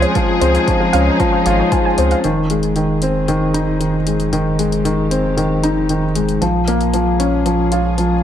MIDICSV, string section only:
0, 0, Header, 1, 2, 480
1, 0, Start_track
1, 0, Key_signature, -4, "minor"
1, 0, Tempo, 521739
1, 144, Time_signature, 4, 2, 24, 8
1, 7573, End_track
2, 0, Start_track
2, 0, Title_t, "String section"
2, 0, Program_c, 0, 48
2, 0, Note_on_c, 0, 53, 81
2, 0, Note_on_c, 0, 56, 72
2, 0, Note_on_c, 0, 68, 85
2, 0, Note_on_c, 0, 72, 64
2, 151, Note_on_c, 0, 63, 74
2, 2026, Note_off_c, 0, 72, 0
2, 2027, Note_off_c, 0, 53, 0
2, 2027, Note_off_c, 0, 68, 0
2, 2028, Note_off_c, 0, 56, 0
2, 2048, Note_off_c, 0, 63, 0
2, 2062, Note_on_c, 0, 60, 57
2, 2062, Note_on_c, 0, 63, 57
2, 2063, Note_on_c, 0, 56, 60
2, 2064, Note_on_c, 0, 53, 61
2, 2064, Note_on_c, 0, 68, 70
2, 3964, Note_off_c, 0, 68, 0
2, 3986, Note_on_c, 0, 67, 74
2, 5866, Note_off_c, 0, 60, 0
2, 5866, Note_off_c, 0, 63, 0
2, 5886, Note_off_c, 0, 67, 0
2, 5898, Note_on_c, 0, 68, 74
2, 5901, Note_on_c, 0, 61, 58
2, 5902, Note_on_c, 0, 58, 57
2, 7573, Note_off_c, 0, 53, 0
2, 7573, Note_off_c, 0, 56, 0
2, 7573, Note_off_c, 0, 58, 0
2, 7573, Note_off_c, 0, 61, 0
2, 7573, Note_off_c, 0, 68, 0
2, 7573, End_track
0, 0, End_of_file